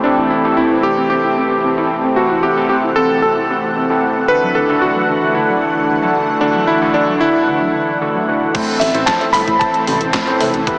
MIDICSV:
0, 0, Header, 1, 7, 480
1, 0, Start_track
1, 0, Tempo, 530973
1, 47, Time_signature, 4, 2, 24, 8
1, 9750, End_track
2, 0, Start_track
2, 0, Title_t, "Electric grand piano"
2, 0, Program_c, 0, 2
2, 33, Note_on_c, 0, 62, 84
2, 273, Note_on_c, 0, 64, 81
2, 287, Note_off_c, 0, 62, 0
2, 501, Note_off_c, 0, 64, 0
2, 514, Note_on_c, 0, 64, 85
2, 743, Note_off_c, 0, 64, 0
2, 754, Note_on_c, 0, 67, 104
2, 979, Note_off_c, 0, 67, 0
2, 993, Note_on_c, 0, 67, 94
2, 1684, Note_off_c, 0, 67, 0
2, 1955, Note_on_c, 0, 66, 86
2, 2184, Note_off_c, 0, 66, 0
2, 2195, Note_on_c, 0, 67, 88
2, 2421, Note_off_c, 0, 67, 0
2, 2434, Note_on_c, 0, 67, 90
2, 2490, Note_off_c, 0, 67, 0
2, 2673, Note_on_c, 0, 69, 107
2, 2900, Note_off_c, 0, 69, 0
2, 2914, Note_on_c, 0, 69, 94
2, 3604, Note_off_c, 0, 69, 0
2, 3872, Note_on_c, 0, 71, 110
2, 4113, Note_on_c, 0, 69, 92
2, 4127, Note_off_c, 0, 71, 0
2, 4353, Note_on_c, 0, 66, 94
2, 4367, Note_off_c, 0, 69, 0
2, 4806, Note_off_c, 0, 66, 0
2, 4834, Note_on_c, 0, 64, 80
2, 5524, Note_off_c, 0, 64, 0
2, 5793, Note_on_c, 0, 62, 100
2, 6033, Note_on_c, 0, 64, 101
2, 6047, Note_off_c, 0, 62, 0
2, 6263, Note_off_c, 0, 64, 0
2, 6274, Note_on_c, 0, 62, 99
2, 6503, Note_off_c, 0, 62, 0
2, 6513, Note_on_c, 0, 64, 113
2, 7204, Note_off_c, 0, 64, 0
2, 7953, Note_on_c, 0, 76, 88
2, 8182, Note_off_c, 0, 76, 0
2, 8193, Note_on_c, 0, 81, 107
2, 8249, Note_off_c, 0, 81, 0
2, 8432, Note_on_c, 0, 83, 116
2, 8673, Note_on_c, 0, 81, 101
2, 8687, Note_off_c, 0, 83, 0
2, 9363, Note_off_c, 0, 81, 0
2, 9750, End_track
3, 0, Start_track
3, 0, Title_t, "Tine electric piano"
3, 0, Program_c, 1, 4
3, 46, Note_on_c, 1, 48, 81
3, 46, Note_on_c, 1, 60, 78
3, 46, Note_on_c, 1, 64, 75
3, 46, Note_on_c, 1, 67, 75
3, 46, Note_on_c, 1, 69, 92
3, 378, Note_off_c, 1, 48, 0
3, 378, Note_off_c, 1, 60, 0
3, 378, Note_off_c, 1, 64, 0
3, 378, Note_off_c, 1, 67, 0
3, 378, Note_off_c, 1, 69, 0
3, 406, Note_on_c, 1, 48, 93
3, 406, Note_on_c, 1, 60, 83
3, 406, Note_on_c, 1, 64, 85
3, 406, Note_on_c, 1, 67, 83
3, 406, Note_on_c, 1, 69, 99
3, 705, Note_off_c, 1, 48, 0
3, 705, Note_off_c, 1, 60, 0
3, 705, Note_off_c, 1, 64, 0
3, 705, Note_off_c, 1, 67, 0
3, 705, Note_off_c, 1, 69, 0
3, 766, Note_on_c, 1, 48, 67
3, 766, Note_on_c, 1, 60, 64
3, 766, Note_on_c, 1, 64, 64
3, 766, Note_on_c, 1, 67, 65
3, 766, Note_on_c, 1, 69, 75
3, 1218, Note_off_c, 1, 48, 0
3, 1218, Note_off_c, 1, 60, 0
3, 1218, Note_off_c, 1, 64, 0
3, 1218, Note_off_c, 1, 67, 0
3, 1218, Note_off_c, 1, 69, 0
3, 1247, Note_on_c, 1, 48, 66
3, 1247, Note_on_c, 1, 60, 63
3, 1247, Note_on_c, 1, 64, 65
3, 1247, Note_on_c, 1, 67, 65
3, 1247, Note_on_c, 1, 69, 79
3, 1578, Note_off_c, 1, 48, 0
3, 1578, Note_off_c, 1, 60, 0
3, 1578, Note_off_c, 1, 64, 0
3, 1578, Note_off_c, 1, 67, 0
3, 1578, Note_off_c, 1, 69, 0
3, 1606, Note_on_c, 1, 48, 83
3, 1606, Note_on_c, 1, 60, 78
3, 1606, Note_on_c, 1, 64, 78
3, 1606, Note_on_c, 1, 67, 75
3, 1606, Note_on_c, 1, 69, 91
3, 1937, Note_off_c, 1, 48, 0
3, 1937, Note_off_c, 1, 60, 0
3, 1937, Note_off_c, 1, 64, 0
3, 1937, Note_off_c, 1, 67, 0
3, 1937, Note_off_c, 1, 69, 0
3, 1966, Note_on_c, 1, 48, 83
3, 1966, Note_on_c, 1, 60, 73
3, 1966, Note_on_c, 1, 64, 73
3, 1966, Note_on_c, 1, 67, 75
3, 1966, Note_on_c, 1, 69, 93
3, 2298, Note_off_c, 1, 48, 0
3, 2298, Note_off_c, 1, 60, 0
3, 2298, Note_off_c, 1, 64, 0
3, 2298, Note_off_c, 1, 67, 0
3, 2298, Note_off_c, 1, 69, 0
3, 2326, Note_on_c, 1, 60, 85
3, 2326, Note_on_c, 1, 64, 86
3, 2326, Note_on_c, 1, 69, 106
3, 2327, Note_on_c, 1, 48, 92
3, 2327, Note_on_c, 1, 67, 85
3, 2625, Note_off_c, 1, 60, 0
3, 2625, Note_off_c, 1, 64, 0
3, 2625, Note_off_c, 1, 69, 0
3, 2626, Note_off_c, 1, 48, 0
3, 2626, Note_off_c, 1, 67, 0
3, 2686, Note_on_c, 1, 60, 60
3, 2686, Note_on_c, 1, 64, 60
3, 2686, Note_on_c, 1, 69, 77
3, 2687, Note_on_c, 1, 48, 67
3, 2687, Note_on_c, 1, 67, 65
3, 3138, Note_off_c, 1, 48, 0
3, 3138, Note_off_c, 1, 60, 0
3, 3138, Note_off_c, 1, 64, 0
3, 3138, Note_off_c, 1, 67, 0
3, 3138, Note_off_c, 1, 69, 0
3, 3166, Note_on_c, 1, 48, 71
3, 3166, Note_on_c, 1, 60, 68
3, 3166, Note_on_c, 1, 64, 63
3, 3166, Note_on_c, 1, 67, 65
3, 3166, Note_on_c, 1, 69, 79
3, 3498, Note_off_c, 1, 48, 0
3, 3498, Note_off_c, 1, 60, 0
3, 3498, Note_off_c, 1, 64, 0
3, 3498, Note_off_c, 1, 67, 0
3, 3498, Note_off_c, 1, 69, 0
3, 3526, Note_on_c, 1, 48, 82
3, 3526, Note_on_c, 1, 60, 77
3, 3526, Note_on_c, 1, 64, 76
3, 3526, Note_on_c, 1, 67, 80
3, 3526, Note_on_c, 1, 69, 96
3, 3857, Note_off_c, 1, 48, 0
3, 3857, Note_off_c, 1, 60, 0
3, 3857, Note_off_c, 1, 64, 0
3, 3857, Note_off_c, 1, 67, 0
3, 3858, Note_off_c, 1, 69, 0
3, 3885, Note_on_c, 1, 50, 82
3, 3885, Note_on_c, 1, 64, 73
3, 3885, Note_on_c, 1, 69, 91
3, 3886, Note_on_c, 1, 62, 74
3, 3886, Note_on_c, 1, 66, 76
3, 4217, Note_off_c, 1, 50, 0
3, 4217, Note_off_c, 1, 62, 0
3, 4217, Note_off_c, 1, 64, 0
3, 4217, Note_off_c, 1, 66, 0
3, 4217, Note_off_c, 1, 69, 0
3, 4246, Note_on_c, 1, 50, 94
3, 4246, Note_on_c, 1, 62, 85
3, 4246, Note_on_c, 1, 64, 85
3, 4246, Note_on_c, 1, 66, 86
3, 4246, Note_on_c, 1, 69, 102
3, 4545, Note_off_c, 1, 50, 0
3, 4545, Note_off_c, 1, 62, 0
3, 4545, Note_off_c, 1, 64, 0
3, 4545, Note_off_c, 1, 66, 0
3, 4545, Note_off_c, 1, 69, 0
3, 4606, Note_on_c, 1, 50, 69
3, 4606, Note_on_c, 1, 62, 63
3, 4606, Note_on_c, 1, 64, 67
3, 4606, Note_on_c, 1, 66, 65
3, 4606, Note_on_c, 1, 69, 77
3, 5057, Note_off_c, 1, 62, 0
3, 5057, Note_off_c, 1, 69, 0
3, 5058, Note_off_c, 1, 50, 0
3, 5058, Note_off_c, 1, 64, 0
3, 5058, Note_off_c, 1, 66, 0
3, 5086, Note_on_c, 1, 50, 69
3, 5086, Note_on_c, 1, 62, 64
3, 5086, Note_on_c, 1, 64, 66
3, 5086, Note_on_c, 1, 66, 63
3, 5086, Note_on_c, 1, 69, 76
3, 5417, Note_off_c, 1, 50, 0
3, 5417, Note_off_c, 1, 62, 0
3, 5417, Note_off_c, 1, 64, 0
3, 5417, Note_off_c, 1, 66, 0
3, 5417, Note_off_c, 1, 69, 0
3, 5446, Note_on_c, 1, 50, 90
3, 5446, Note_on_c, 1, 64, 76
3, 5446, Note_on_c, 1, 66, 80
3, 5446, Note_on_c, 1, 69, 98
3, 5447, Note_on_c, 1, 62, 77
3, 5778, Note_off_c, 1, 50, 0
3, 5778, Note_off_c, 1, 62, 0
3, 5778, Note_off_c, 1, 64, 0
3, 5778, Note_off_c, 1, 66, 0
3, 5778, Note_off_c, 1, 69, 0
3, 5806, Note_on_c, 1, 50, 84
3, 5806, Note_on_c, 1, 62, 75
3, 5806, Note_on_c, 1, 64, 79
3, 5806, Note_on_c, 1, 66, 77
3, 5806, Note_on_c, 1, 69, 94
3, 6138, Note_off_c, 1, 50, 0
3, 6138, Note_off_c, 1, 62, 0
3, 6138, Note_off_c, 1, 64, 0
3, 6138, Note_off_c, 1, 66, 0
3, 6138, Note_off_c, 1, 69, 0
3, 6166, Note_on_c, 1, 50, 99
3, 6166, Note_on_c, 1, 62, 90
3, 6166, Note_on_c, 1, 64, 87
3, 6166, Note_on_c, 1, 66, 86
3, 6166, Note_on_c, 1, 69, 106
3, 6465, Note_off_c, 1, 50, 0
3, 6465, Note_off_c, 1, 62, 0
3, 6465, Note_off_c, 1, 64, 0
3, 6465, Note_off_c, 1, 66, 0
3, 6465, Note_off_c, 1, 69, 0
3, 6526, Note_on_c, 1, 50, 69
3, 6526, Note_on_c, 1, 62, 67
3, 6526, Note_on_c, 1, 64, 64
3, 6526, Note_on_c, 1, 66, 65
3, 6526, Note_on_c, 1, 69, 77
3, 6977, Note_off_c, 1, 50, 0
3, 6977, Note_off_c, 1, 62, 0
3, 6977, Note_off_c, 1, 64, 0
3, 6977, Note_off_c, 1, 66, 0
3, 6977, Note_off_c, 1, 69, 0
3, 7246, Note_on_c, 1, 50, 90
3, 7246, Note_on_c, 1, 62, 85
3, 7246, Note_on_c, 1, 64, 82
3, 7246, Note_on_c, 1, 66, 82
3, 7246, Note_on_c, 1, 69, 99
3, 7457, Note_off_c, 1, 50, 0
3, 7458, Note_off_c, 1, 62, 0
3, 7458, Note_off_c, 1, 64, 0
3, 7458, Note_off_c, 1, 66, 0
3, 7458, Note_off_c, 1, 69, 0
3, 7487, Note_on_c, 1, 62, 79
3, 7487, Note_on_c, 1, 64, 77
3, 7487, Note_on_c, 1, 66, 76
3, 7487, Note_on_c, 1, 71, 87
3, 7698, Note_off_c, 1, 62, 0
3, 7698, Note_off_c, 1, 64, 0
3, 7698, Note_off_c, 1, 66, 0
3, 7698, Note_off_c, 1, 71, 0
3, 7727, Note_on_c, 1, 45, 87
3, 7727, Note_on_c, 1, 60, 80
3, 7727, Note_on_c, 1, 64, 82
3, 7727, Note_on_c, 1, 69, 78
3, 7727, Note_on_c, 1, 72, 101
3, 8058, Note_off_c, 1, 45, 0
3, 8058, Note_off_c, 1, 60, 0
3, 8058, Note_off_c, 1, 64, 0
3, 8058, Note_off_c, 1, 69, 0
3, 8058, Note_off_c, 1, 72, 0
3, 8087, Note_on_c, 1, 45, 105
3, 8087, Note_on_c, 1, 60, 92
3, 8087, Note_on_c, 1, 64, 89
3, 8087, Note_on_c, 1, 69, 97
3, 8087, Note_on_c, 1, 72, 114
3, 8386, Note_off_c, 1, 45, 0
3, 8386, Note_off_c, 1, 60, 0
3, 8386, Note_off_c, 1, 64, 0
3, 8386, Note_off_c, 1, 69, 0
3, 8386, Note_off_c, 1, 72, 0
3, 8447, Note_on_c, 1, 45, 75
3, 8447, Note_on_c, 1, 60, 66
3, 8447, Note_on_c, 1, 64, 72
3, 8447, Note_on_c, 1, 69, 69
3, 8447, Note_on_c, 1, 72, 83
3, 8898, Note_off_c, 1, 45, 0
3, 8898, Note_off_c, 1, 60, 0
3, 8898, Note_off_c, 1, 64, 0
3, 8898, Note_off_c, 1, 69, 0
3, 8898, Note_off_c, 1, 72, 0
3, 8927, Note_on_c, 1, 45, 75
3, 8927, Note_on_c, 1, 60, 72
3, 8927, Note_on_c, 1, 64, 71
3, 8927, Note_on_c, 1, 69, 70
3, 8927, Note_on_c, 1, 72, 85
3, 9258, Note_off_c, 1, 45, 0
3, 9258, Note_off_c, 1, 60, 0
3, 9258, Note_off_c, 1, 64, 0
3, 9258, Note_off_c, 1, 69, 0
3, 9258, Note_off_c, 1, 72, 0
3, 9287, Note_on_c, 1, 45, 90
3, 9287, Note_on_c, 1, 60, 87
3, 9287, Note_on_c, 1, 64, 86
3, 9287, Note_on_c, 1, 69, 84
3, 9287, Note_on_c, 1, 72, 101
3, 9618, Note_off_c, 1, 45, 0
3, 9618, Note_off_c, 1, 60, 0
3, 9618, Note_off_c, 1, 64, 0
3, 9618, Note_off_c, 1, 69, 0
3, 9618, Note_off_c, 1, 72, 0
3, 9647, Note_on_c, 1, 52, 91
3, 9647, Note_on_c, 1, 59, 87
3, 9647, Note_on_c, 1, 64, 81
3, 9647, Note_on_c, 1, 67, 84
3, 9647, Note_on_c, 1, 71, 102
3, 9750, Note_off_c, 1, 52, 0
3, 9750, Note_off_c, 1, 59, 0
3, 9750, Note_off_c, 1, 64, 0
3, 9750, Note_off_c, 1, 67, 0
3, 9750, Note_off_c, 1, 71, 0
3, 9750, End_track
4, 0, Start_track
4, 0, Title_t, "Synth arpeggio sound"
4, 0, Program_c, 2, 84
4, 46, Note_on_c, 2, 60, 99
4, 140, Note_off_c, 2, 60, 0
4, 166, Note_on_c, 2, 64, 102
4, 222, Note_off_c, 2, 64, 0
4, 286, Note_on_c, 2, 60, 72
4, 395, Note_off_c, 2, 60, 0
4, 406, Note_on_c, 2, 60, 72
4, 514, Note_off_c, 2, 60, 0
4, 525, Note_on_c, 2, 60, 96
4, 620, Note_off_c, 2, 60, 0
4, 646, Note_on_c, 2, 64, 99
4, 703, Note_off_c, 2, 64, 0
4, 766, Note_on_c, 2, 60, 74
4, 875, Note_off_c, 2, 60, 0
4, 886, Note_on_c, 2, 60, 75
4, 995, Note_off_c, 2, 60, 0
4, 1006, Note_on_c, 2, 60, 93
4, 1100, Note_off_c, 2, 60, 0
4, 1126, Note_on_c, 2, 64, 96
4, 1183, Note_off_c, 2, 64, 0
4, 1246, Note_on_c, 2, 60, 75
4, 1355, Note_off_c, 2, 60, 0
4, 1366, Note_on_c, 2, 60, 76
4, 1475, Note_off_c, 2, 60, 0
4, 1486, Note_on_c, 2, 60, 98
4, 1580, Note_off_c, 2, 60, 0
4, 1606, Note_on_c, 2, 64, 100
4, 1663, Note_off_c, 2, 64, 0
4, 1726, Note_on_c, 2, 60, 73
4, 1835, Note_off_c, 2, 60, 0
4, 1846, Note_on_c, 2, 60, 74
4, 1955, Note_off_c, 2, 60, 0
4, 1966, Note_on_c, 2, 60, 95
4, 2060, Note_off_c, 2, 60, 0
4, 2086, Note_on_c, 2, 64, 98
4, 2143, Note_off_c, 2, 64, 0
4, 2206, Note_on_c, 2, 60, 72
4, 2315, Note_off_c, 2, 60, 0
4, 2326, Note_on_c, 2, 60, 73
4, 2435, Note_off_c, 2, 60, 0
4, 2446, Note_on_c, 2, 60, 97
4, 2540, Note_off_c, 2, 60, 0
4, 2566, Note_on_c, 2, 64, 96
4, 2623, Note_off_c, 2, 64, 0
4, 2686, Note_on_c, 2, 60, 73
4, 2795, Note_off_c, 2, 60, 0
4, 2806, Note_on_c, 2, 60, 76
4, 2915, Note_off_c, 2, 60, 0
4, 2926, Note_on_c, 2, 60, 94
4, 3020, Note_off_c, 2, 60, 0
4, 3046, Note_on_c, 2, 64, 94
4, 3103, Note_off_c, 2, 64, 0
4, 3166, Note_on_c, 2, 60, 74
4, 3276, Note_off_c, 2, 60, 0
4, 3287, Note_on_c, 2, 60, 77
4, 3396, Note_off_c, 2, 60, 0
4, 3406, Note_on_c, 2, 60, 97
4, 3500, Note_off_c, 2, 60, 0
4, 3526, Note_on_c, 2, 64, 96
4, 3583, Note_off_c, 2, 64, 0
4, 3646, Note_on_c, 2, 60, 76
4, 3756, Note_off_c, 2, 60, 0
4, 3767, Note_on_c, 2, 60, 72
4, 3881, Note_off_c, 2, 60, 0
4, 3886, Note_on_c, 2, 50, 98
4, 3980, Note_off_c, 2, 50, 0
4, 4007, Note_on_c, 2, 54, 100
4, 4063, Note_off_c, 2, 54, 0
4, 4126, Note_on_c, 2, 50, 73
4, 4235, Note_off_c, 2, 50, 0
4, 4246, Note_on_c, 2, 50, 73
4, 4355, Note_off_c, 2, 50, 0
4, 4366, Note_on_c, 2, 50, 97
4, 4460, Note_off_c, 2, 50, 0
4, 4486, Note_on_c, 2, 54, 97
4, 4543, Note_off_c, 2, 54, 0
4, 4606, Note_on_c, 2, 50, 74
4, 4715, Note_off_c, 2, 50, 0
4, 4726, Note_on_c, 2, 50, 78
4, 4836, Note_off_c, 2, 50, 0
4, 4847, Note_on_c, 2, 50, 91
4, 4941, Note_off_c, 2, 50, 0
4, 4966, Note_on_c, 2, 54, 97
4, 5023, Note_off_c, 2, 54, 0
4, 5087, Note_on_c, 2, 50, 77
4, 5196, Note_off_c, 2, 50, 0
4, 5207, Note_on_c, 2, 50, 77
4, 5316, Note_off_c, 2, 50, 0
4, 5327, Note_on_c, 2, 50, 99
4, 5420, Note_off_c, 2, 50, 0
4, 5447, Note_on_c, 2, 54, 94
4, 5503, Note_off_c, 2, 54, 0
4, 5566, Note_on_c, 2, 50, 76
4, 5676, Note_off_c, 2, 50, 0
4, 5687, Note_on_c, 2, 50, 71
4, 5796, Note_off_c, 2, 50, 0
4, 5807, Note_on_c, 2, 50, 97
4, 5901, Note_off_c, 2, 50, 0
4, 5927, Note_on_c, 2, 54, 105
4, 5983, Note_off_c, 2, 54, 0
4, 6047, Note_on_c, 2, 50, 72
4, 6156, Note_off_c, 2, 50, 0
4, 6167, Note_on_c, 2, 50, 74
4, 6276, Note_off_c, 2, 50, 0
4, 6287, Note_on_c, 2, 50, 101
4, 6381, Note_off_c, 2, 50, 0
4, 6407, Note_on_c, 2, 54, 100
4, 6463, Note_off_c, 2, 54, 0
4, 6528, Note_on_c, 2, 50, 72
4, 6636, Note_off_c, 2, 50, 0
4, 6767, Note_on_c, 2, 50, 91
4, 6861, Note_off_c, 2, 50, 0
4, 6887, Note_on_c, 2, 54, 99
4, 6943, Note_off_c, 2, 54, 0
4, 7006, Note_on_c, 2, 50, 72
4, 7116, Note_off_c, 2, 50, 0
4, 7127, Note_on_c, 2, 50, 77
4, 7235, Note_off_c, 2, 50, 0
4, 7246, Note_on_c, 2, 50, 95
4, 7340, Note_off_c, 2, 50, 0
4, 7366, Note_on_c, 2, 54, 101
4, 7422, Note_off_c, 2, 54, 0
4, 7486, Note_on_c, 2, 50, 74
4, 7595, Note_off_c, 2, 50, 0
4, 7606, Note_on_c, 2, 50, 73
4, 7720, Note_off_c, 2, 50, 0
4, 7726, Note_on_c, 2, 57, 87
4, 7820, Note_off_c, 2, 57, 0
4, 7846, Note_on_c, 2, 69, 81
4, 7902, Note_off_c, 2, 69, 0
4, 7966, Note_on_c, 2, 69, 73
4, 8060, Note_off_c, 2, 69, 0
4, 8086, Note_on_c, 2, 64, 77
4, 8180, Note_off_c, 2, 64, 0
4, 8206, Note_on_c, 2, 57, 81
4, 8300, Note_off_c, 2, 57, 0
4, 8326, Note_on_c, 2, 69, 74
4, 8383, Note_off_c, 2, 69, 0
4, 8446, Note_on_c, 2, 69, 78
4, 8540, Note_off_c, 2, 69, 0
4, 8567, Note_on_c, 2, 64, 81
4, 8661, Note_off_c, 2, 64, 0
4, 8687, Note_on_c, 2, 57, 82
4, 8780, Note_off_c, 2, 57, 0
4, 8807, Note_on_c, 2, 69, 79
4, 8863, Note_off_c, 2, 69, 0
4, 8927, Note_on_c, 2, 69, 74
4, 9020, Note_off_c, 2, 69, 0
4, 9046, Note_on_c, 2, 64, 81
4, 9140, Note_off_c, 2, 64, 0
4, 9165, Note_on_c, 2, 57, 88
4, 9260, Note_off_c, 2, 57, 0
4, 9286, Note_on_c, 2, 69, 79
4, 9343, Note_off_c, 2, 69, 0
4, 9406, Note_on_c, 2, 69, 82
4, 9500, Note_off_c, 2, 69, 0
4, 9526, Note_on_c, 2, 64, 75
4, 9620, Note_off_c, 2, 64, 0
4, 9646, Note_on_c, 2, 52, 87
4, 9740, Note_off_c, 2, 52, 0
4, 9750, End_track
5, 0, Start_track
5, 0, Title_t, "Analog synth pad"
5, 0, Program_c, 3, 89
5, 0, Note_on_c, 3, 52, 78
5, 0, Note_on_c, 3, 57, 71
5, 0, Note_on_c, 3, 60, 67
5, 0, Note_on_c, 3, 67, 85
5, 1930, Note_off_c, 3, 67, 0
5, 1965, Note_on_c, 3, 78, 84
5, 3850, Note_off_c, 3, 52, 0
5, 3850, Note_off_c, 3, 57, 0
5, 3850, Note_off_c, 3, 60, 0
5, 3887, Note_on_c, 3, 52, 77
5, 3887, Note_on_c, 3, 57, 73
5, 3887, Note_on_c, 3, 62, 70
5, 7690, Note_off_c, 3, 52, 0
5, 7690, Note_off_c, 3, 62, 0
5, 7690, Note_off_c, 3, 78, 0
5, 7691, Note_off_c, 3, 57, 0
5, 7726, Note_on_c, 3, 52, 80
5, 7726, Note_on_c, 3, 69, 88
5, 7727, Note_on_c, 3, 57, 73
5, 7727, Note_on_c, 3, 60, 74
5, 9627, Note_off_c, 3, 57, 0
5, 9627, Note_off_c, 3, 60, 0
5, 9627, Note_off_c, 3, 69, 0
5, 9646, Note_on_c, 3, 55, 77
5, 9646, Note_on_c, 3, 59, 75
5, 9646, Note_on_c, 3, 67, 89
5, 9750, Note_off_c, 3, 52, 0
5, 9750, Note_off_c, 3, 55, 0
5, 9750, Note_off_c, 3, 59, 0
5, 9750, Note_off_c, 3, 67, 0
5, 9750, End_track
6, 0, Start_track
6, 0, Title_t, "Analog synth bass"
6, 0, Program_c, 4, 38
6, 7966, Note_on_c, 4, 33, 99
6, 8051, Note_off_c, 4, 33, 0
6, 8087, Note_on_c, 4, 33, 82
6, 8172, Note_off_c, 4, 33, 0
6, 8446, Note_on_c, 4, 31, 96
6, 8532, Note_off_c, 4, 31, 0
6, 8566, Note_on_c, 4, 33, 90
6, 8651, Note_off_c, 4, 33, 0
6, 8927, Note_on_c, 4, 33, 94
6, 9012, Note_off_c, 4, 33, 0
6, 9046, Note_on_c, 4, 33, 84
6, 9131, Note_off_c, 4, 33, 0
6, 9406, Note_on_c, 4, 45, 89
6, 9491, Note_off_c, 4, 45, 0
6, 9526, Note_on_c, 4, 33, 81
6, 9611, Note_off_c, 4, 33, 0
6, 9750, End_track
7, 0, Start_track
7, 0, Title_t, "Drums"
7, 7726, Note_on_c, 9, 36, 119
7, 7727, Note_on_c, 9, 42, 84
7, 7727, Note_on_c, 9, 49, 104
7, 7817, Note_off_c, 9, 36, 0
7, 7817, Note_off_c, 9, 42, 0
7, 7817, Note_off_c, 9, 49, 0
7, 7966, Note_on_c, 9, 38, 39
7, 7966, Note_on_c, 9, 46, 108
7, 8057, Note_off_c, 9, 38, 0
7, 8057, Note_off_c, 9, 46, 0
7, 8086, Note_on_c, 9, 42, 55
7, 8177, Note_off_c, 9, 42, 0
7, 8206, Note_on_c, 9, 36, 118
7, 8206, Note_on_c, 9, 38, 124
7, 8206, Note_on_c, 9, 39, 93
7, 8206, Note_on_c, 9, 42, 87
7, 8297, Note_off_c, 9, 36, 0
7, 8297, Note_off_c, 9, 38, 0
7, 8297, Note_off_c, 9, 39, 0
7, 8297, Note_off_c, 9, 42, 0
7, 8327, Note_on_c, 9, 42, 37
7, 8417, Note_off_c, 9, 42, 0
7, 8446, Note_on_c, 9, 39, 60
7, 8446, Note_on_c, 9, 46, 112
7, 8537, Note_off_c, 9, 39, 0
7, 8537, Note_off_c, 9, 46, 0
7, 8566, Note_on_c, 9, 36, 61
7, 8566, Note_on_c, 9, 42, 53
7, 8657, Note_off_c, 9, 36, 0
7, 8657, Note_off_c, 9, 42, 0
7, 8686, Note_on_c, 9, 36, 120
7, 8686, Note_on_c, 9, 42, 83
7, 8777, Note_off_c, 9, 36, 0
7, 8777, Note_off_c, 9, 42, 0
7, 8807, Note_on_c, 9, 42, 38
7, 8897, Note_off_c, 9, 42, 0
7, 8926, Note_on_c, 9, 46, 108
7, 8926, Note_on_c, 9, 48, 78
7, 9017, Note_off_c, 9, 46, 0
7, 9017, Note_off_c, 9, 48, 0
7, 9047, Note_on_c, 9, 42, 56
7, 9137, Note_off_c, 9, 42, 0
7, 9166, Note_on_c, 9, 36, 121
7, 9167, Note_on_c, 9, 38, 127
7, 9167, Note_on_c, 9, 39, 98
7, 9167, Note_on_c, 9, 42, 87
7, 9257, Note_off_c, 9, 36, 0
7, 9257, Note_off_c, 9, 38, 0
7, 9257, Note_off_c, 9, 39, 0
7, 9257, Note_off_c, 9, 42, 0
7, 9287, Note_on_c, 9, 42, 38
7, 9377, Note_off_c, 9, 42, 0
7, 9407, Note_on_c, 9, 46, 109
7, 9407, Note_on_c, 9, 48, 78
7, 9497, Note_off_c, 9, 46, 0
7, 9497, Note_off_c, 9, 48, 0
7, 9527, Note_on_c, 9, 42, 51
7, 9617, Note_off_c, 9, 42, 0
7, 9647, Note_on_c, 9, 36, 124
7, 9647, Note_on_c, 9, 42, 84
7, 9737, Note_off_c, 9, 36, 0
7, 9737, Note_off_c, 9, 42, 0
7, 9750, End_track
0, 0, End_of_file